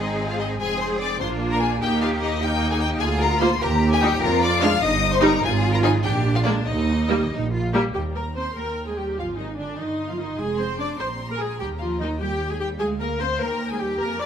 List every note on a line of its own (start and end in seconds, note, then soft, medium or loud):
0.00 0.61 G#1 medium
0.00 0.59 G#3 medium
0.00 0.59 C4 medium
0.00 0.29 D#4 medium
0.00 0.58 G#4 loud
0.00 0.08 D#5 loud
0.28 0.39 F4 medium
0.28 0.35 F5 loud
0.39 0.60 D#4 medium
0.39 0.47 D#5 loud
0.59 1.20 F1 medium
0.59 1.20 G#3 medium
0.59 1.20 C4 medium
0.59 0.79 G#4 loud
0.59 1.20 G#4 loud
0.59 0.80 G#5 loud
0.79 1.00 C5 loud
0.79 0.88 C6 loud
1.00 1.20 D5 loud
1.00 1.20 D6 loud
1.20 1.82 A#1 medium
1.20 1.80 A#3 medium
1.20 1.81 D4 medium
1.20 1.80 F4 medium
1.20 1.28 C5 loud
1.20 1.29 C6 loud
1.49 1.60 A#4 loud
1.49 1.61 A#5 loud
1.60 1.81 G#4 loud
1.60 1.69 G#5 loud
1.81 2.99 D#2 loud
1.81 2.40 A#3 medium
1.81 2.39 D#4 medium
1.81 1.89 G4 loud
1.81 2.40 G4 loud
1.81 2.01 G5 loud
2.01 2.09 F4 loud
2.01 2.09 F5 loud
2.21 2.42 D#4 loud
2.21 2.41 D#5 loud
2.41 3.00 A#3 medium
2.41 3.00 D#4 medium
2.41 3.02 D#4 medium
2.41 2.50 G4 medium
2.41 2.71 G5 loud
2.70 2.75 G#4 loud
2.70 2.82 G#5 loud
2.81 3.01 G4 loud
2.81 2.89 G5 loud
3.00 3.51 D2 loud
3.00 3.60 F4 loud
3.00 3.21 G#4 loud
3.00 3.08 G#5 loud
3.20 3.41 A#4 loud
3.20 3.40 A#5 loud
3.40 3.50 A#3 loud
3.40 3.50 F4 loud
3.40 3.48 C5 loud
3.40 3.61 C6 loud
3.60 4.12 D#2 loud
3.60 4.21 G4 loud
3.60 3.69 A#4 loud
3.60 3.91 A#5 loud
3.92 3.96 G#4 loud
3.92 4.02 G#5 loud
4.01 4.11 G3 loud
4.01 4.11 D#4 loud
4.01 4.22 G4 loud
4.01 4.21 G5 loud
4.21 4.72 F2 loud
4.21 4.82 F4 loud
4.21 4.41 A#4 loud
4.21 4.41 A#5 loud
4.42 4.61 D5 loud
4.42 4.62 D6 loud
4.61 4.71 G#3 loud
4.61 4.71 D4 loud
4.61 4.82 F5 loud
4.61 4.82 F6 loud
4.82 5.33 G1 loud
4.82 5.41 D#4 loud
4.82 5.12 D#5 loud
4.82 5.12 D#6 loud
5.13 5.23 C5 loud
5.13 5.23 C6 loud
5.21 5.31 G3 loud
5.21 5.31 D#4 loud
5.21 5.43 A#4 loud
5.21 5.42 A#5 loud
5.43 5.94 G#1 loud
5.43 6.05 F4 loud
5.43 5.73 G#4 loud
5.43 5.52 G#5 loud
5.72 5.83 A#4 loud
5.72 5.78 A#5 loud
5.82 5.93 F3 medium
5.82 5.93 D#4 loud
5.82 5.90 G#4 loud
5.82 5.91 G#5 loud
6.03 6.58 A#1 loud
6.03 6.67 D4 loud
6.03 6.35 G4 loud
6.03 6.11 G5 loud
6.35 6.46 F4 loud
6.35 6.40 F5 loud
6.44 6.56 G#3 medium
6.44 6.56 A#3 medium
6.44 6.68 D4 medium
6.44 6.52 D5 loud
6.66 7.21 D#2 loud
6.66 7.32 D#4 loud
6.66 7.27 D#4 medium
6.66 7.30 D#5 loud
7.09 7.20 G3 loud
7.09 7.20 A#3 loud
7.32 7.85 A#1 loud
7.32 7.52 D#4 loud
7.53 7.74 F4 medium
7.73 7.84 G3 medium
7.73 7.84 A#3 medium
7.73 7.82 G4 loud
7.94 8.53 D#2 medium
7.94 8.15 G3 medium
7.94 8.02 G4 medium
7.94 8.03 G5 medium
7.94 8.53 A#5 soft
8.16 8.37 A#3 medium
8.16 8.24 A#4 medium
8.16 8.36 A#5 medium
8.35 8.45 C4 medium
8.35 8.56 C5 medium
8.35 8.57 C6 medium
8.56 9.17 D#2 medium
8.56 8.65 A#3 medium
8.56 8.87 A#4 medium
8.56 9.19 G5 soft
8.56 8.88 A#5 medium
8.87 8.92 G#3 medium
8.87 8.98 G#4 medium
8.87 8.98 G#5 medium
8.98 9.18 G3 medium
8.98 9.18 G4 medium
8.98 9.06 G5 medium
9.18 9.79 G#1 medium
9.18 9.38 F3 medium
9.18 9.39 F4 medium
9.18 9.27 F5 medium
9.18 9.78 G#5 soft
9.38 9.47 D#3 medium
9.38 9.59 D#4 medium
9.38 9.47 D#5 medium
9.58 9.79 D3 medium
9.58 9.78 D4 medium
9.58 9.79 D5 medium
9.78 10.39 G1 medium
9.78 9.87 D#3 medium
9.78 10.09 D#4 medium
9.78 10.09 D#5 medium
9.78 10.99 C6 medium
10.08 10.13 F3 medium
10.08 10.20 F4 medium
10.08 10.19 F5 medium
10.17 10.39 D#3 medium
10.17 10.39 D#4 medium
10.17 10.38 D#5 medium
10.38 10.98 F1 medium
10.38 10.59 G#3 medium
10.38 10.59 G#4 medium
10.38 10.59 G#5 medium
10.57 10.79 C4 medium
10.57 10.79 C5 medium
10.57 10.78 C6 medium
10.78 10.99 D4 medium
10.78 10.88 D5 medium
10.78 10.98 D6 medium
10.98 11.59 A#1 medium
10.98 11.29 C4 medium
10.98 11.07 C5 medium
10.98 11.58 A#5 medium
10.98 11.29 C6 medium
11.28 11.34 A#3 medium
11.28 11.40 A#4 medium
11.28 11.39 A#5 medium
11.38 11.48 G#3 medium
11.38 11.60 G#4 medium
11.38 11.59 G#5 medium
11.58 12.81 D#2 medium
11.58 11.68 G3 medium
11.58 11.68 G4 medium
11.58 11.66 G5 medium
11.58 12.19 A#5 medium
11.78 12.00 F3 medium
11.78 12.00 F4 medium
11.78 11.86 F5 medium
11.98 12.21 D#3 medium
11.98 12.08 D#4 medium
11.98 12.19 D#5 medium
12.19 12.29 G3 medium
12.19 12.50 G4 medium
12.19 12.49 G5 medium
12.19 12.80 G5 medium
12.50 12.55 G#3 medium
12.50 12.61 G#4 medium
12.50 12.60 G#5 medium
12.60 12.80 G3 medium
12.60 12.68 G4 medium
12.60 12.68 G5 medium
12.79 13.39 D2 medium
12.79 13.01 G#3 medium
12.79 12.87 G#4 medium
12.79 13.39 F5 medium
12.79 12.87 G#5 medium
12.99 13.08 A#3 medium
12.99 13.19 A#4 medium
12.99 13.08 A#5 medium
13.19 13.29 C4 medium
13.19 13.40 C5 medium
13.19 13.27 C6 medium
13.40 14.01 D#2 medium
13.40 13.70 A#3 medium
13.40 13.70 A#4 medium
13.40 14.01 G5 medium
13.40 13.70 A#5 medium
13.69 13.81 G#3 medium
13.69 13.81 G#4 medium
13.69 13.80 G#5 medium
13.79 13.89 G3 medium
13.79 14.00 G4 medium
13.79 14.00 G5 medium
14.00 14.26 F2 medium
14.00 14.21 A#3 medium
14.00 14.20 A#4 medium
14.00 14.26 G#5 medium
14.00 14.20 A#5 medium
14.20 14.26 D4 medium
14.20 14.26 D5 medium
14.20 14.26 D6 medium